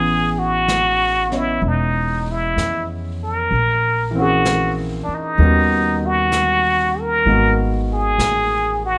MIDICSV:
0, 0, Header, 1, 6, 480
1, 0, Start_track
1, 0, Tempo, 938967
1, 1793, Time_signature, 4, 2, 24, 8
1, 4591, End_track
2, 0, Start_track
2, 0, Title_t, "Muted trumpet"
2, 0, Program_c, 0, 59
2, 0, Note_on_c, 0, 68, 67
2, 199, Note_on_c, 0, 66, 80
2, 206, Note_off_c, 0, 68, 0
2, 697, Note_on_c, 0, 64, 64
2, 704, Note_off_c, 0, 66, 0
2, 859, Note_on_c, 0, 63, 67
2, 867, Note_off_c, 0, 64, 0
2, 1185, Note_on_c, 0, 64, 72
2, 1193, Note_off_c, 0, 63, 0
2, 1467, Note_off_c, 0, 64, 0
2, 1657, Note_on_c, 0, 70, 71
2, 2106, Note_off_c, 0, 70, 0
2, 2140, Note_on_c, 0, 66, 73
2, 2423, Note_off_c, 0, 66, 0
2, 2573, Note_on_c, 0, 62, 53
2, 2630, Note_on_c, 0, 63, 66
2, 2638, Note_off_c, 0, 62, 0
2, 3099, Note_on_c, 0, 66, 78
2, 3106, Note_off_c, 0, 63, 0
2, 3582, Note_on_c, 0, 70, 73
2, 3590, Note_off_c, 0, 66, 0
2, 3861, Note_off_c, 0, 70, 0
2, 4058, Note_on_c, 0, 68, 83
2, 4503, Note_off_c, 0, 68, 0
2, 4525, Note_on_c, 0, 66, 76
2, 4591, Note_off_c, 0, 66, 0
2, 4591, End_track
3, 0, Start_track
3, 0, Title_t, "Grand piano"
3, 0, Program_c, 1, 0
3, 0, Control_c, 1, 64, 127
3, 0, Note_on_c, 1, 52, 45
3, 0, Note_on_c, 1, 59, 40
3, 0, Note_on_c, 1, 61, 39
3, 0, Note_on_c, 1, 68, 48
3, 657, Note_off_c, 1, 59, 0
3, 663, Note_off_c, 1, 61, 0
3, 664, Note_on_c, 1, 59, 34
3, 670, Note_on_c, 1, 61, 30
3, 678, Note_on_c, 1, 75, 32
3, 680, Note_on_c, 1, 73, 38
3, 1779, Note_off_c, 1, 52, 0
3, 1789, Note_off_c, 1, 59, 0
3, 1792, Note_off_c, 1, 61, 0
3, 1796, Note_off_c, 1, 75, 0
3, 1797, Note_off_c, 1, 73, 0
3, 1799, Control_c, 1, 64, 0
3, 1808, Note_off_c, 1, 68, 0
3, 1875, Control_c, 1, 64, 127
3, 2101, Note_on_c, 1, 52, 48
3, 2113, Note_on_c, 1, 58, 44
3, 2123, Note_on_c, 1, 60, 46
3, 2142, Note_on_c, 1, 61, 45
3, 2156, Note_on_c, 1, 68, 52
3, 2739, Note_off_c, 1, 52, 0
3, 2745, Note_off_c, 1, 58, 0
3, 2750, Note_off_c, 1, 60, 0
3, 2755, Control_c, 1, 64, 0
3, 2758, Note_off_c, 1, 61, 0
3, 2759, Note_on_c, 1, 51, 44
3, 2761, Note_on_c, 1, 55, 39
3, 2765, Note_on_c, 1, 59, 37
3, 2766, Note_on_c, 1, 61, 37
3, 2767, Note_off_c, 1, 68, 0
3, 2769, Note_on_c, 1, 66, 45
3, 2845, Control_c, 1, 64, 127
3, 3706, Note_off_c, 1, 51, 0
3, 3711, Note_off_c, 1, 59, 0
3, 3714, Note_off_c, 1, 55, 0
3, 3714, Control_c, 1, 64, 0
3, 3714, Note_on_c, 1, 51, 45
3, 3716, Note_off_c, 1, 61, 0
3, 3716, Note_on_c, 1, 58, 41
3, 3717, Note_off_c, 1, 66, 0
3, 3719, Note_on_c, 1, 59, 39
3, 3720, Note_on_c, 1, 56, 40
3, 3725, Note_on_c, 1, 66, 50
3, 3797, Control_c, 1, 64, 127
3, 4591, Note_off_c, 1, 51, 0
3, 4591, Note_off_c, 1, 56, 0
3, 4591, Note_off_c, 1, 58, 0
3, 4591, Note_off_c, 1, 59, 0
3, 4591, Note_off_c, 1, 66, 0
3, 4591, End_track
4, 0, Start_track
4, 0, Title_t, "Upright bass"
4, 0, Program_c, 2, 32
4, 0, Note_on_c, 2, 33, 59
4, 810, Note_off_c, 2, 33, 0
4, 827, Note_on_c, 2, 28, 63
4, 1291, Note_off_c, 2, 28, 0
4, 1310, Note_on_c, 2, 41, 54
4, 1770, Note_off_c, 2, 41, 0
4, 1793, Note_on_c, 2, 34, 61
4, 2575, Note_off_c, 2, 34, 0
4, 2750, Note_on_c, 2, 39, 69
4, 3688, Note_off_c, 2, 39, 0
4, 3709, Note_on_c, 2, 32, 63
4, 4165, Note_off_c, 2, 32, 0
4, 4183, Note_on_c, 2, 33, 56
4, 4591, Note_off_c, 2, 33, 0
4, 4591, End_track
5, 0, Start_track
5, 0, Title_t, "Muted upright bass strokes"
5, 2597, Note_on_c, 9, 29, 31
5, 2648, Note_off_c, 9, 29, 0
5, 4591, End_track
6, 0, Start_track
6, 0, Title_t, "Drums"
6, 349, Note_on_c, 9, 25, 32
6, 349, Note_on_c, 9, 38, 35
6, 349, Note_on_c, 9, 44, 47
6, 400, Note_off_c, 9, 38, 0
6, 400, Note_off_c, 9, 44, 0
6, 673, Note_on_c, 9, 38, 22
6, 724, Note_off_c, 9, 38, 0
6, 836, Note_off_c, 9, 25, 0
6, 836, Note_on_c, 9, 25, 32
6, 1318, Note_off_c, 9, 25, 0
6, 1318, Note_on_c, 9, 25, 24
6, 1318, Note_on_c, 9, 38, 34
6, 1318, Note_on_c, 9, 44, 40
6, 1369, Note_off_c, 9, 38, 0
6, 1369, Note_off_c, 9, 44, 0
6, 1797, Note_off_c, 9, 25, 0
6, 1797, Note_on_c, 9, 25, 28
6, 2276, Note_off_c, 9, 25, 0
6, 2276, Note_on_c, 9, 25, 30
6, 2276, Note_on_c, 9, 38, 37
6, 2276, Note_on_c, 9, 44, 47
6, 2327, Note_off_c, 9, 38, 0
6, 2327, Note_off_c, 9, 44, 0
6, 2752, Note_off_c, 9, 25, 0
6, 2752, Note_on_c, 9, 25, 32
6, 3230, Note_off_c, 9, 25, 0
6, 3230, Note_on_c, 9, 25, 29
6, 3230, Note_on_c, 9, 38, 35
6, 3230, Note_on_c, 9, 44, 42
6, 3281, Note_off_c, 9, 38, 0
6, 3281, Note_off_c, 9, 44, 0
6, 3712, Note_off_c, 9, 25, 0
6, 3712, Note_on_c, 9, 25, 29
6, 4188, Note_off_c, 9, 25, 0
6, 4188, Note_on_c, 9, 25, 35
6, 4188, Note_on_c, 9, 38, 35
6, 4188, Note_on_c, 9, 44, 50
6, 4239, Note_off_c, 9, 38, 0
6, 4239, Note_off_c, 9, 44, 0
6, 4591, Note_off_c, 9, 25, 0
6, 4591, End_track
0, 0, End_of_file